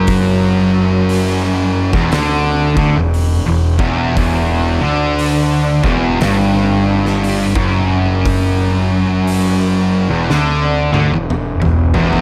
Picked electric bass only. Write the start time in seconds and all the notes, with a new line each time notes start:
Already playing: F#1
1.93 E1
2.12 D2
2.76 D2
2.95 E1
3.46 E1
3.79 E1
4.17 E1
4.83 D2
5.83 E1
6.23 G1
7.55 F#1
10.11 E1
10.30 D2
10.93 D2
11.12 E1
11.63 E1
11.94 E1